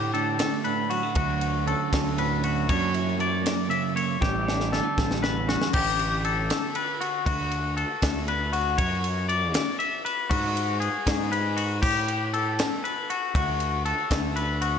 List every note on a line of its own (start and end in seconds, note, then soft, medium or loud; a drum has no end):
0.00 0.13 A2 medium
0.00 0.40 A2 loud
0.00 0.13 D3 medium
0.00 0.39 A3 medium
0.00 0.14 D4 medium
0.00 0.13 G4 medium
0.00 1.12 G4 medium
0.13 1.65 D3 medium
0.13 0.65 D4 medium
0.13 0.64 A4 medium
0.13 ride medium
0.39 0.90 A3 medium
0.39 snare loud
0.39 ride medium
0.64 1.16 A2 medium
0.64 1.67 D4 medium
0.64 0.90 B4 medium
0.64 ride medium
0.90 1.03 F#3 medium
0.90 1.15 F#4 medium
0.90 ride medium
1.03 1.16 A3 medium
1.15 1.73 D2 medium
1.15 2.69 D2 medium
1.15 1.92 F#3 medium
1.15 1.67 F#4 loud
1.15 kick loud
1.15 ride loud
1.41 2.66 F#4 medium
1.41 ride medium
1.66 2.68 D3 medium
1.66 2.16 C#4 medium
1.66 2.18 A4 medium
1.66 ride medium
1.93 2.69 D2 loud
1.93 2.43 F#3 medium
1.93 kick medium
1.93 snare loud
1.93 ride loud
2.17 2.68 A2 medium
2.17 2.65 C#4 medium
2.17 2.43 B4 medium
2.17 ride medium
2.44 2.69 F#3 medium
2.44 2.69 F#4 medium
2.44 ride medium
2.69 4.18 F#2 medium
2.69 3.46 F#2 loud
2.69 3.17 F#3 medium
2.69 3.41 A#3 medium
2.69 3.20 C#4 medium
2.69 2.94 D4 medium
2.69 3.20 C#5 loud
2.69 kick loud
2.69 ride loud
2.94 4.47 E4 medium
2.94 ride medium
3.18 4.17 F#3 medium
3.18 3.70 D5 medium
3.18 ride medium
3.42 3.94 A#3 medium
3.42 ride loud
3.47 snare loud
3.69 4.17 C#3 medium
3.69 4.17 C#4 medium
3.69 3.95 E5 medium
3.69 ride medium
3.95 4.17 A#3 medium
3.95 4.21 C#5 medium
3.95 ride medium
4.20 4.79 A1 medium
4.20 4.71 A2 medium
4.20 4.97 G3 medium
4.20 4.72 G4 medium
4.20 kick loud
4.20 snare medium
4.48 7.26 D4 medium
4.48 snare medium
4.60 snare medium
4.71 7.25 D3 medium
4.71 4.83 A3 medium
4.71 5.23 A4 medium
4.71 snare medium
4.83 5.20 B3 soft
4.98 5.55 A1 loud
4.98 5.45 G3 medium
4.98 kick medium
4.98 snare medium
5.11 snare medium
5.21 5.70 E2 medium
5.21 5.70 B3 medium
5.21 5.48 B4 medium
5.21 snare loud
5.46 5.70 G3 medium
5.46 5.73 F#4 medium
5.46 snare loud
5.62 snare loud
5.73 6.51 A1 loud
5.73 6.24 G4 loud
5.73 kick loud
5.73 crash loud
5.99 ride medium
6.24 6.75 A4 medium
6.24 ride medium
6.50 snare loud
6.50 ride loud
6.75 7.01 B4 medium
6.75 ride medium
7.01 7.25 F#4 medium
7.01 ride medium
7.26 7.84 D2 loud
7.26 7.76 F#4 loud
7.26 kick loud
7.26 ride loud
7.51 ride medium
7.77 8.27 A4 medium
7.77 ride medium
8.02 8.79 D2 loud
8.02 kick medium
8.02 snare loud
8.02 ride loud
8.28 8.53 B4 medium
8.28 ride medium
8.53 8.78 F#4 medium
8.53 ride medium
8.78 9.55 F#2 loud
8.78 9.28 C#5 loud
8.78 kick loud
8.78 ride loud
9.04 ride medium
9.29 9.78 D5 medium
9.29 ride medium
9.54 snare loud
9.54 ride loud
9.79 10.04 E5 medium
9.79 ride medium
10.05 10.30 B4 medium
10.05 ride medium
10.30 10.88 G#2 loud
10.30 10.80 F#4 loud
10.30 kick loud
10.30 ride loud
10.57 ride medium
10.80 11.31 G#4 medium
10.80 ride medium
11.07 11.82 G#2 loud
11.07 kick medium
11.07 snare loud
11.07 ride loud
11.32 11.57 B4 medium
11.32 ride medium
11.56 11.82 F#4 medium
11.56 ride medium
11.82 12.59 A2 loud
11.82 12.33 G4 loud
11.82 kick loud
11.82 crash loud
12.08 ride medium
12.33 12.84 A4 medium
12.33 ride medium
12.59 snare loud
12.59 ride loud
12.84 13.09 B4 medium
12.84 ride medium
13.10 13.35 F#4 medium
13.10 ride medium
13.35 13.92 D2 medium
13.35 13.85 F#4 loud
13.35 kick loud
13.35 ride loud
13.60 ride medium
13.85 14.36 A4 medium
13.85 ride medium
14.11 14.79 D2 loud
14.11 kick medium
14.11 snare loud
14.11 ride loud
14.36 14.61 B4 medium
14.36 ride medium
14.62 14.79 F#4 medium
14.62 ride medium